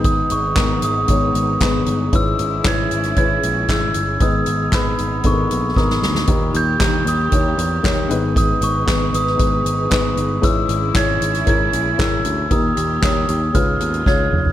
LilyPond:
<<
  \new Staff \with { instrumentName = "Glockenspiel" } { \time 4/4 \key gis \minor \tempo 4 = 116 dis'''8 cis'''4 dis'''2 r8 | e'''4 gis'''4 gis'''4 e'''4 | dis'''4 b''4 cis'''4 dis'''8. r16 | r8 g'''4 dis'''2~ dis'''8 |
dis'''8 cis'''4 dis'''2 r8 | e'''4 gis'''4 gis'''4 e'''4 | dis'''4 dis'''4 eis'''4 gis'''8. r16 | }
  \new Staff \with { instrumentName = "Upright piano" } { \time 4/4 \key gis \minor <b dis' gis' b'>8. r16 <b dis' gis' ais'>4 <b dis' gis' cis''>4 <b dis' gis' b'>4 | <cis' e' gis' b'>4 <cis' e' gis' b'>4 <cis' e' gis' b'>4 <cis' e' gis' cis''>4 | <b dis' gis' b'>4 <b dis' gis' b'>4 <b dis' gis' a' ais'>4 <b dis' gis' ais'>4 | <ais dis' g' ais'>4 <ais dis' g' ais'>4 <ais dis' g' cis''>4 <ais dis' g' cis''>8 <b dis' gis' b'>8~ |
<b dis' gis' b'>8. r16 <b dis' gis' b'>4 <b dis' gis' b'>4 <b dis' gis' b'>4 | <cis' e' gis' b'>4 <cis' e' gis' cis''>4 <cis' e' gis' ais'>4 <cis' e' gis' ais'>4 | <ais dis' g' ais'>4 <ais dis' g' cis''>4 <cis' eis' gis' b'>4 <cis' eis' gis' cis''>4 | }
  \new Staff \with { instrumentName = "Upright piano" } { \clef bass \time 4/4 \key gis \minor <gis, dis>4 r2. | <gis, gis>4. r2 r8 | <gis, dis>4. r2 r8 | ais,4. r2 <gis, dis>8~ |
<gis, dis>4 r2. | <gis, gis>4. r2 r8 | ais,4. r8 gis,4. r8 | }
  \new Staff \with { instrumentName = "String section" } { \time 4/4 \key gis \minor << { <b dis'>1 | <cis' e'>1 | <b dis'>1 | <ais g'>2.~ <ais g'>8 <dis' b'>8~ |
<dis' b'>1 | <cis' e'>1 | <ais g'>2 <b eis'>2 | } \\ { gis1~ | gis1~ | gis1 | dis2.~ dis8 gis8~ |
gis1~ | gis1 | dis2 cis2 | } >> }
  \new Staff \with { instrumentName = "Picked electric bass" } { \clef bass \time 4/4 \key gis \minor gis,,8 gis,,8 gis,,8 gis,,8 gis,,8 gis,,8 gis,,8 g,,8 | gis,,8 gis,,8 gis,,8 gis,,8 gis,,8 ais,,8 gis,,8 g,,8 | gis,,8 gis,,8 gis,,8 gis,,8 gis,,8 ais,,8 gis,,8 d,8 | dis,8 dis,8 dis,8 dis,8 dis,8 e,8 dis,8 gis,,8~ |
gis,,8 gis,,8 r8 gis,,8 gis,,8 gis,,8 gis,,8 g,,8 | gis,,8 gis,,8 gis,,8 gis,,8 gis,,8 ais,,8 gis,,8 d,8 | dis,8 dis,8 dis,8 dis,8 cis,8 dis,8 cis,8 eis,,8 | }
  \new DrumStaff \with { instrumentName = "Drums" } \drummode { \time 4/4 <hh bd>8 hh8 <hc hh bd sn>8 hh8 <hh bd>8 hh8 <hc hh bd sn>8 hh8 | <hh bd>8 hh8 <hc hh bd sn>8 hh16 <hh sn>16 <hh bd>8 hh8 <hc hh bd sn>8 hh8 | <hh bd>8 hh8 <hc hh bd sn>8 hh8 <hh bd>8 hh8 <bd sn>16 sn16 sn16 sn16 | <hh bd>8 hh8 <hc hh bd sn>8 hh8 <hh bd>8 hh8 <hc hh bd sn>8 hh8 |
<hh bd>8 hh8 <hc hh bd sn>8 hh16 sn16 <hh bd>8 hh8 <hc hh bd sn>8 hh8 | <hh bd>8 hh8 <hc hh bd sn>8 hh16 <hh sn>16 <hh bd>8 hh8 <hc hh bd sn>8 hh8 | <hh bd>8 hh8 <hc hh bd sn>8 hh8 <hh bd>8 hh16 hh16 <bd sn>8 toml16 tomfh16 | }
>>